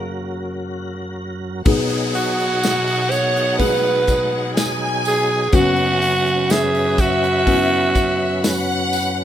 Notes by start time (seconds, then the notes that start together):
Already playing: F#1 F#2 F#3 A#3 F#4 G#4 A#4
1.65 B1 B2 F#3 B3 D#4 G#4 F#5, kick, crash, tambourine, downlifter
1.90 open hi-hat
2.14 F#4, hi-hat pedal, open hi-hat, tambourine
2.39 hi-hat pedal
2.63 snare, hi-hat pedal, open hi-hat, tambourine
2.88 open hi-hat
3.11 C#5, hi-hat pedal, open hi-hat, tambourine
3.36 hi-hat pedal
3.59 B3 D#4 G#4 B4, kick, hi-hat pedal, open hi-hat
4.07 kick, hi-hat pedal, open hi-hat, tambourine
4.56 G#5, snare, hi-hat pedal, open hi-hat, tambourine
5.05 G#4, hi-hat pedal, open hi-hat, tambourine
5.52 F#1 F#2 F#3 B3 C#4 F#4 B4 F#5, kick, hi-hat pedal, open hi-hat, tambourine
5.76 open hi-hat
6.02 hi-hat pedal, open hi-hat
6.26 hi-hat pedal
6.50 G#4 E5, snare, hi-hat pedal, open hi-hat, tambourine
6.75 open hi-hat
6.98 F#4, kick, hi-hat pedal, open hi-hat, tambourine
7.23 hi-hat pedal
7.47 B3 C#4 E4, kick, hi-hat pedal, open hi-hat, tambourine
7.54 F#4
7.95 kick, hi-hat pedal, open hi-hat, tambourine
8.42 F#5, snare, hi-hat pedal, open hi-hat, tambourine
8.92 hi-hat pedal, open hi-hat, tambourine